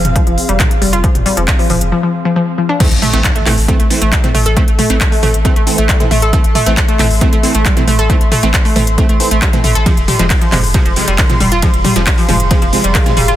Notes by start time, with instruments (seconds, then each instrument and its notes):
Already playing: ambient pad C4 G#4 F5 C6
0.05 sub bass F1, closed hi-hat, mid tom
0.16 synth arpeggio sound F3, kick, closed hi-hat
0.27 sub bass F1, synth arpeggio sound F3, closed hi-hat
0.38 open hi-hat
0.49 sub bass F1, synth arpeggio sound G3, closed hi-hat
0.60 synth arpeggio sound D#3, kick, clap, closed hi-hat, mid tom
0.71 closed hi-hat
0.82 sub bass F1, synth arpeggio sound G3, open hi-hat
0.93 sub bass F1, synth arpeggio sound F4, closed hi-hat
1.04 synth arpeggio sound F3, kick, closed hi-hat
1.15 sub bass F1, closed hi-hat, mid tom
1.26 synth arpeggio sound G3, open hi-hat
1.37 sub bass F1, synth arpeggio sound F3, closed hi-hat
1.48 kick, clap, closed hi-hat
1.59 synth arpeggio sound F3, open hi-hat
1.70 sub bass F1, synth arpeggio sound F3, mid tom, open hi-hat
1.81 sub bass F1, closed hi-hat
1.92 synth arpeggio sound F3
2.03 synth arpeggio sound F3
2.25 synth arpeggio sound F3
2.36 synth arpeggio sound F3
2.58 synth arpeggio sound F3
2.69 synth arpeggio sound D4
2.80 supersaw synth E3 A3 C4, synth arpeggio sound A3, kick, closed hi-hat, crash, impact
2.90 sub bass A1, ambient pad E5, closed hi-hat
3.02 synth arpeggio sound A3, ambient pad A4, mid tom, open hi-hat
3.13 sub bass A1, supersaw synth E3 A3 C4, synth arpeggio sound A3, closed hi-hat
3.24 kick, clap, closed hi-hat
3.35 synth arpeggio sound A3, closed hi-hat
3.46 sub bass A1, supersaw synth E3 A3 C4, synth arpeggio sound A3, clap, mid tom, open hi-hat
3.58 sub bass A1, open hi-hat
3.68 supersaw synth E3 A3 C4, synth arpeggio sound A3, kick, closed hi-hat
3.75 ambient pad C6
3.80 sub bass A1, synth arpeggio sound A3, closed hi-hat
3.90 supersaw synth E3 A3 C4, open hi-hat
4.02 sub bass A1, synth arpeggio sound A3, closed hi-hat
4.12 synth arpeggio sound G3, kick, clap, closed hi-hat
4.24 supersaw synth E3 A3 C4, closed hi-hat, mid tom
4.35 sub bass A1, synth arpeggio sound A3, mid tom, open hi-hat
4.46 sub bass A1, synth arpeggio sound A4, closed hi-hat
4.57 supersaw synth E3 A3 C4, synth arpeggio sound A3, kick, closed hi-hat
4.68 sub bass A1, closed hi-hat
4.79 synth arpeggio sound A3, mid tom, open hi-hat
4.90 sub bass A1, supersaw synth E3 A3 C4, synth arpeggio sound A3, closed hi-hat
5.01 kick, clap, closed hi-hat
5.12 synth arpeggio sound A3, open hi-hat
5.23 sub bass A1, supersaw synth E3 A3 C4, synth arpeggio sound A3, mid tom, open hi-hat
5.34 sub bass A1, closed hi-hat
5.45 supersaw synth E3 A3 C4, synth arpeggio sound A3, kick, closed hi-hat
5.56 sub bass A1, synth arpeggio sound A3, closed hi-hat
5.67 supersaw synth E3 A3 C4, open hi-hat
5.78 sub bass A1, synth arpeggio sound A3, closed hi-hat
5.89 synth arpeggio sound G3, kick, clap, closed hi-hat
6.00 supersaw synth E3 A3 C4, closed hi-hat, mid tom
6.11 sub bass A1, synth arpeggio sound A3, mid tom, open hi-hat
6.22 sub bass A1, synth arpeggio sound A4, closed hi-hat
6.33 supersaw synth E3 A3 C4, synth arpeggio sound A3, kick, closed hi-hat
6.44 sub bass A1, closed hi-hat
6.55 synth arpeggio sound A3, mid tom, open hi-hat
6.66 sub bass A1, supersaw synth E3 A3 C4, synth arpeggio sound A3, closed hi-hat
6.77 kick, clap, closed hi-hat
6.88 synth arpeggio sound A3, closed hi-hat
6.99 sub bass A1, supersaw synth E3 A3 C4, synth arpeggio sound A3, clap, mid tom, open hi-hat
7.10 sub bass A1, open hi-hat
7.21 supersaw synth E3 A3 C4, synth arpeggio sound A3, kick, closed hi-hat
7.33 sub bass A1, synth arpeggio sound A3, closed hi-hat
7.43 supersaw synth E3 A3 C4, open hi-hat
7.55 sub bass A1, synth arpeggio sound A3, closed hi-hat
7.66 synth arpeggio sound G3, kick, clap, closed hi-hat
7.77 supersaw synth E3 A3 C4, closed hi-hat, mid tom
7.88 sub bass A1, synth arpeggio sound A3, mid tom, open hi-hat
7.99 sub bass A1, synth arpeggio sound A4, closed hi-hat
8.10 supersaw synth E3 A3 C4, synth arpeggio sound A3, kick, closed hi-hat
8.21 sub bass A1, closed hi-hat
8.32 synth arpeggio sound A3, mid tom, open hi-hat
8.43 sub bass A1, supersaw synth E3 A3 C4, synth arpeggio sound A3, closed hi-hat
8.54 kick, clap, closed hi-hat
8.65 synth arpeggio sound A3, open hi-hat
8.76 sub bass A1, supersaw synth E3 A3 C4, synth arpeggio sound A3, mid tom, open hi-hat
8.87 sub bass A1, closed hi-hat
8.98 supersaw synth E3 A3 C4, synth arpeggio sound A3, kick, closed hi-hat
9.09 sub bass A1, synth arpeggio sound A3, closed hi-hat
9.20 supersaw synth E3 A3 C4, open hi-hat
9.31 sub bass A1, synth arpeggio sound A3, closed hi-hat
9.42 synth arpeggio sound G3, kick, clap, closed hi-hat
9.53 supersaw synth E3 A3 C4, closed hi-hat, mid tom
9.64 sub bass A1, synth arpeggio sound A3, mid tom, open hi-hat
9.75 sub bass A1, synth arpeggio sound A4, closed hi-hat
9.86 supersaw synth C3 F3 G#3, synth arpeggio sound F3, kick, closed hi-hat, ride
9.97 sub bass F1, closed hi-hat
10.08 synth arpeggio sound G3, mid tom, open hi-hat
10.19 sub bass F1, supersaw synth C3 F3 G#3, synth arpeggio sound F3, ambient pad G#4, closed hi-hat
10.26 ambient pad F5
10.30 kick, clap, closed hi-hat, ride
10.41 synth arpeggio sound F3, closed hi-hat
10.52 sub bass F1, supersaw synth C3 F3 G#3, synth arpeggio sound F3, clap, mid tom, open hi-hat
10.64 sub bass F1, open hi-hat
10.74 supersaw synth C3 F3 G#3, synth arpeggio sound F3, kick, closed hi-hat, ride
10.86 sub bass F1, synth arpeggio sound F3, closed hi-hat
10.96 supersaw synth C3 F3 G#3, open hi-hat
11.08 sub bass F1, synth arpeggio sound G3, closed hi-hat
11.18 synth arpeggio sound D#3, kick, clap, closed hi-hat, ride
11.30 supersaw synth C3 F3 G#3, closed hi-hat, mid tom
11.40 sub bass F1, synth arpeggio sound G3, mid tom, open hi-hat
11.52 sub bass F1, synth arpeggio sound F4, closed hi-hat
11.62 supersaw synth C3 F3 G#3, synth arpeggio sound F3, kick, closed hi-hat, ride
11.74 sub bass F1, closed hi-hat
11.85 synth arpeggio sound G3, mid tom, open hi-hat
11.96 sub bass F1, supersaw synth C3 F3 G#3, synth arpeggio sound F3, closed hi-hat
12.07 kick, clap, closed hi-hat, ride
12.18 synth arpeggio sound F3, open hi-hat
12.29 sub bass F1, supersaw synth C3 F3 G#3, synth arpeggio sound F3, mid tom, open hi-hat
12.40 sub bass F1, closed hi-hat
12.51 supersaw synth C3 F3 G#3, synth arpeggio sound F3, kick, closed hi-hat, ride
12.62 sub bass F1, synth arpeggio sound F3, closed hi-hat
12.73 supersaw synth C3 F3 G#3, open hi-hat
12.84 sub bass F1, synth arpeggio sound G3, closed hi-hat
12.95 synth arpeggio sound D#3, kick, clap, closed hi-hat, ride
13.06 supersaw synth C3 F3 G#3, closed hi-hat, mid tom
13.17 sub bass F1, synth arpeggio sound G3, mid tom, open hi-hat
13.28 sub bass F1, synth arpeggio sound F4, closed hi-hat